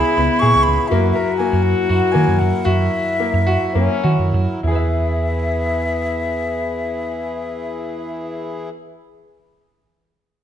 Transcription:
Already playing: harmonium C#3 B3 E4, french horn E4, grand piano G#4, flute B5
0.17 picked electric bass C#2, grand piano B3
0.40 picked electric bass A#2, grand piano G#4, flute C#6
0.55 picked electric bass C#2
0.63 flute B5
0.68 picked electric bass C#2
0.88 grand piano A#3, french horn F#4, flute E5
0.92 picked electric bass F#2, harmonium F#3 A#4
1.12 grand piano A#4, flute E5
1.37 grand piano A#3, flute G#5
1.53 picked electric bass F#2
1.63 flute F#5
1.89 picked electric bass F#2, grand piano F#4
2.12 picked electric bass D#3, grand piano A#3, flute G#5
2.28 picked electric bass F#2
2.39 picked electric bass F#2, flute F#5
2.65 picked electric bass F#2, grand piano F#4, flute E5
3.20 grand piano A#3
3.34 picked electric bass F#2
3.47 grand piano F#4
3.74 picked electric bass F#2, grand piano A#3, french horn C#4
4.03 picked electric bass D#3, grand piano F#4
4.19 picked electric bass F#2
4.34 picked electric bass F#2
4.63 picked electric bass E2, harmonium E3 E4 G#4, french horn B3, grand piano E4, flute E5
4.67 grand piano G#4 B4
4.75 grand piano E5

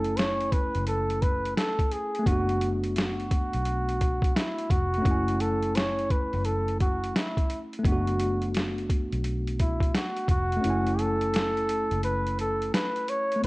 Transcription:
Already playing: fingered electric bass F#1, tine electric piano A3 C#4 E4 G#5, flugelhorn A4
0.04 closed hi-hat
0.17 flugelhorn C#5, snare, closed hi-hat
0.41 closed hi-hat
0.52 flugelhorn B4, kick, closed hi-hat
0.75 fingered electric bass F#1, closed hi-hat
0.86 flugelhorn A4, closed hi-hat
1.10 closed hi-hat
1.22 flugelhorn B4, kick, closed hi-hat
1.45 closed hi-hat
1.57 flugelhorn A4, snare, closed hi-hat
1.79 kick, closed hi-hat
1.91 flugelhorn G#4, closed hi-hat
2.15 closed hi-hat
2.19 tine electric piano A3
2.23 fingered electric bass F#1, tine electric piano B3, flugelhorn F#4, kick, closed hi-hat
2.28 tine electric piano D4
2.32 tine electric piano F#4
2.49 closed hi-hat
2.61 closed hi-hat
2.84 closed hi-hat
2.96 flugelhorn F#4, snare, closed hi-hat
3.20 closed hi-hat
3.31 kick, closed hi-hat
3.54 fingered electric bass B1, closed hi-hat
3.66 closed hi-hat
3.89 closed hi-hat
4.01 kick, closed hi-hat
4.22 kick, closed hi-hat
4.36 flugelhorn E4, snare, closed hi-hat
4.58 closed hi-hat
4.70 fingered electric bass F1, flugelhorn F#4, kick, closed hi-hat
4.94 closed hi-hat
4.98 tine electric piano A3
5.02 fingered electric bass F#1, tine electric piano C#4, kick, closed hi-hat
5.07 tine electric piano E4
5.11 tine electric piano G#5
5.28 closed hi-hat
5.40 flugelhorn A4, closed hi-hat
5.63 closed hi-hat
5.75 flugelhorn C#5, snare, closed hi-hat
5.99 closed hi-hat
6.10 flugelhorn B4, kick, closed hi-hat
6.33 fingered electric bass F#1, closed hi-hat
6.45 flugelhorn A4, closed hi-hat
6.68 closed hi-hat
6.81 flugelhorn F#4, kick, closed hi-hat
7.04 closed hi-hat
7.16 flugelhorn E4, snare, closed hi-hat
7.37 kick, closed hi-hat
7.50 closed hi-hat
7.73 closed hi-hat
7.79 tine electric piano A3
7.83 fingered electric bass F#1, tine electric piano B3, flugelhorn F#4, kick, closed hi-hat
7.88 tine electric piano D4
7.92 tine electric piano F#4
8.07 closed hi-hat
8.20 closed hi-hat
8.42 closed hi-hat
8.54 snare, closed hi-hat
8.78 closed hi-hat
8.89 kick, closed hi-hat
9.12 fingered electric bass B1, closed hi-hat
9.24 closed hi-hat
9.47 closed hi-hat
9.59 flugelhorn E4, kick, closed hi-hat
9.80 kick, closed hi-hat
9.95 flugelhorn F#4, snare, closed hi-hat
10.17 closed hi-hat
10.28 fingered electric bass F1, flugelhorn F#4, kick, closed hi-hat
10.52 closed hi-hat
10.57 tine electric piano A3
10.61 fingered electric bass F#1, tine electric piano C#4, closed hi-hat
10.66 tine electric piano E4
10.70 tine electric piano G#5
10.87 closed hi-hat
10.99 flugelhorn A4, closed hi-hat
11.21 closed hi-hat
11.34 snare, closed hi-hat
11.57 closed hi-hat
11.69 closed hi-hat
11.91 fingered electric bass F#1, closed hi-hat
12.03 flugelhorn B4, closed hi-hat
12.26 closed hi-hat
12.39 flugelhorn A4, closed hi-hat
12.62 closed hi-hat
12.74 flugelhorn B4, snare, closed hi-hat
12.96 closed hi-hat
13.08 flugelhorn C#5, closed hi-hat
13.31 closed hi-hat
13.36 tine electric piano A3
13.40 fingered electric bass F#1, tine electric piano B3, flugelhorn B4, closed hi-hat

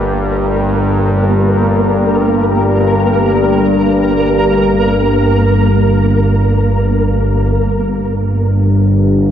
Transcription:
Already playing: synth drone G1 G2, synth texture A#3 A#4
7.57 synth drone G1 G2, analog synth pad D4
8.34 analog synth pad C5
8.67 analog synth pad G4

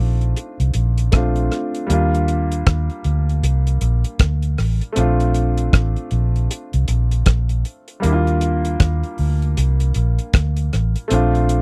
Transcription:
Already playing: grand piano A3 C4 D4 F4
0.00 fingered electric bass A#1
0.21 closed hi-hat
0.37 closed hi-hat
0.60 fingered electric bass C2, closed hi-hat
0.74 fingered electric bass A#1, closed hi-hat
0.98 closed hi-hat
1.12 fingered electric bass A#1, grand piano A3 C4 D4 F4, kick, cross-stick, closed hi-hat
1.36 closed hi-hat
1.52 cross-stick, closed hi-hat
1.75 closed hi-hat
1.87 fingered electric bass D#2, grand piano G3 A#3, closed hi-hat
1.91 grand piano D4 F4
2.14 closed hi-hat
2.28 closed hi-hat
2.52 closed hi-hat
2.67 fingered electric bass D#2, kick, cross-stick, closed hi-hat
2.90 closed hi-hat
3.04 fingered electric bass D2, closed hi-hat
3.29 closed hi-hat
3.43 fingered electric bass C2, closed hi-hat
3.67 closed hi-hat
3.81 fingered electric bass A#1, closed hi-hat
4.04 closed hi-hat
4.19 fingered electric bass D2, kick, cross-stick, closed hi-hat
4.42 closed hi-hat
4.58 fingered electric bass A1, cross-stick, open hi-hat
4.81 closed hi-hat
4.92 grand piano A3 C4 D4, closed hi-hat
4.97 fingered electric bass A#1, grand piano F4
5.20 closed hi-hat
5.34 closed hi-hat
5.57 closed hi-hat
5.73 fingered electric bass A1, kick, cross-stick, closed hi-hat
5.96 closed hi-hat
6.11 fingered electric bass A#1, closed hi-hat
6.36 closed hi-hat
6.51 closed hi-hat
6.73 fingered electric bass C2, closed hi-hat
6.88 fingered electric bass A#1, closed hi-hat
7.11 closed hi-hat
7.26 fingered electric bass A#1, kick, cross-stick, closed hi-hat
7.49 closed hi-hat
7.65 closed hi-hat
7.88 closed hi-hat
8.00 grand piano G3 A#3, closed hi-hat
8.04 fingered electric bass D#2, grand piano D4 E4
8.13 grand piano F4
8.27 closed hi-hat
8.41 closed hi-hat
8.65 closed hi-hat
8.80 fingered electric bass D#2, kick, cross-stick, closed hi-hat
9.03 closed hi-hat
9.18 fingered electric bass D2, open hi-hat
9.42 closed hi-hat
9.57 fingered electric bass C2, closed hi-hat
9.80 closed hi-hat
9.94 fingered electric bass A#1, closed hi-hat
10.18 closed hi-hat
10.33 fingered electric bass D2, kick, cross-stick, closed hi-hat
10.57 closed hi-hat
10.73 fingered electric bass A1, cross-stick, closed hi-hat
10.96 closed hi-hat
11.08 fingered electric bass A#1, grand piano A3 C4 D4, closed hi-hat
11.14 grand piano F4
11.35 closed hi-hat
11.49 closed hi-hat

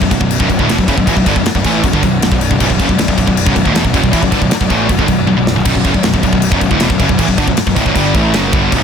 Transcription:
Already playing: string section B3 F#4 D5
0.02 picked electric bass B0, distorted electric guitar B1 F#2, kick
0.11 picked electric bass B0, distorted electric guitar B1 F#2, kick, crash
0.21 picked electric bass B0, distorted electric guitar B1 F#2, kick
0.31 crash
0.40 picked electric bass B0, distorted electric guitar B1 F#2, kick
0.50 picked electric bass B0, distorted electric guitar B1 F#2, kick, crash
0.59 picked electric bass D1, distorted electric guitar D2 A2, kick
0.69 picked electric bass E1, distorted electric guitar E2 B2, snare, crash
0.78 picked electric bass B0, distorted electric guitar B1 F#2, kick
0.88 picked electric bass F#1, distorted electric guitar F#2 C#3, kick, crash
0.98 picked electric bass B0, distorted electric guitar B1 F#2, kick
1.07 picked electric bass A1, distorted electric guitar A2 E3, kick, crash
1.16 picked electric bass B0, distorted electric guitar B1 F#2, kick
1.26 picked electric bass G1, distorted electric guitar G2 D3, kick, crash
1.36 picked electric bass B0, distorted electric guitar B1 F#2, kick
1.46 muted distorted electric guitar stroke, muted picked electric bass stroke, snare, crash
1.55 picked electric bass B0, distorted electric guitar B1 F#2, kick
1.65 picked electric bass A1, distorted electric guitar A2 E3 A3, kick, crash
1.84 picked electric bass B0, distorted electric guitar B1 F#2, kick, crash
1.93 picked electric bass G1, distorted electric guitar G2 D3, kick
2.03 picked electric bass B0, distorted electric guitar B1 F#2, kick, crash
2.22 picked electric bass B0, distorted electric guitar B1 F#2, snare, crash
2.32 picked electric bass B0, distorted electric guitar B1 F#2, kick
2.41 crash
2.51 picked electric bass B0, distorted electric guitar B1 F#2, kick
2.60 picked electric bass B0, distorted electric guitar B1 F#2, kick, crash
2.70 picked electric bass B0, distorted electric guitar B1 F#2, kick
2.80 picked electric bass F#1, distorted electric guitar F#2 C#3, kick, crash
2.89 picked electric bass B0, distorted electric guitar B1 F#2, kick
2.98 picked electric bass B0, distorted electric guitar B1 F#2, snare, crash
3.08 picked electric bass B0, distorted electric guitar B1 F#2, kick
3.17 picked electric bass B0, distorted electric guitar B1 F#2, kick, crash
3.27 picked electric bass B0, distorted electric guitar B1 F#2, kick
3.37 crash
3.46 picked electric bass B0, distorted electric guitar B1 F#2, kick
3.55 picked electric bass B0, distorted electric guitar B1 F#2, kick, crash
3.64 picked electric bass D1, distorted electric guitar D2 A2, kick
3.74 picked electric bass E1, distorted electric guitar E2 B2, snare, crash
3.84 picked electric bass B0, distorted electric guitar B1 F#2, kick
3.94 picked electric bass F#1, distorted electric guitar F#2 C#3, kick, crash
4.03 picked electric bass B0, distorted electric guitar B1 F#2, kick
4.13 picked electric bass A1, distorted electric guitar A2 E3, kick, crash
4.23 picked electric bass B0, distorted electric guitar B1 F#2, kick
4.32 picked electric bass G1, distorted electric guitar G2 D3, kick, crash
4.42 picked electric bass B0, distorted electric guitar B1 F#2, kick
4.51 muted picked electric bass stroke, muted distorted electric guitar stroke, snare, crash
4.61 picked electric bass B0, distorted electric guitar B1 F#2, kick
4.70 picked electric bass A1, distorted electric guitar A2 E3 A3, kick, crash
4.89 picked electric bass B0, distorted electric guitar B1 F#2, kick, crash
4.98 picked electric bass G1, distorted electric guitar G2 D3, kick
5.08 picked electric bass B0, distorted electric guitar B1 F#2, kick, crash
5.27 picked electric bass B0, distorted electric guitar B1 F#2, high tom
5.37 picked electric bass B0, distorted electric guitar B1 F#2
5.47 snare
5.56 picked electric bass B0, distorted electric guitar B1 F#2
5.65 picked electric bass B0, distorted electric guitar B1 F#2, kick, crash
5.75 picked electric bass B0, distorted electric guitar B1 F#2, kick
5.84 picked electric bass F#1, distorted electric guitar F#2 C#3, kick, crash
5.94 picked electric bass B0, distorted electric guitar B1 F#2, kick
6.03 picked electric bass B0, distorted electric guitar B1 F#2, snare, crash
6.14 picked electric bass B0, distorted electric guitar B1 F#2, kick
6.23 picked electric bass B0, distorted electric guitar B1 F#2, kick, crash
6.33 picked electric bass B0, distorted electric guitar B1 F#2, kick
6.42 crash
6.52 picked electric bass B0, distorted electric guitar B1 F#2, kick
6.61 picked electric bass B0, distorted electric guitar B1 F#2, kick, crash
6.71 picked electric bass D1, distorted electric guitar D2 A2, kick
6.80 picked electric bass E1, distorted electric guitar E2 B2, snare, crash
6.90 picked electric bass B0, distorted electric guitar B1 F#2, kick
7.00 picked electric bass F#1, distorted electric guitar F#2 C#3, kick, crash
7.09 picked electric bass B0, distorted electric guitar B1 F#2, kick
7.19 picked electric bass A1, distorted electric guitar A2 E3, kick, crash
7.28 picked electric bass B0, distorted electric guitar B1 F#2, kick
7.38 picked electric bass G1, distorted electric guitar G2 D3, kick, crash
7.47 picked electric bass B0, distorted electric guitar B1 F#2, kick
7.57 muted distorted electric guitar stroke, muted picked electric bass stroke, snare, crash
7.66 picked electric bass B0, distorted electric guitar B1 F#2, kick
7.76 picked electric bass D1, distorted electric guitar D2 A2, kick, crash
7.86 picked electric bass B0, distorted electric guitar B1 F#2, kick
7.95 picked electric bass G1, distorted electric guitar G2 D3 G3, kick, crash
8.14 picked electric bass A1, distorted electric guitar A2 E3 A3, kick, crash
8.34 picked electric bass F#1, distorted electric guitar F#2 C#3 F#3, snare, crash
8.53 picked electric bass G1, distorted electric guitar G2 D3 G3, kick, crash
8.72 picked electric bass B0, distorted electric guitar B1 F#2, kick, crash

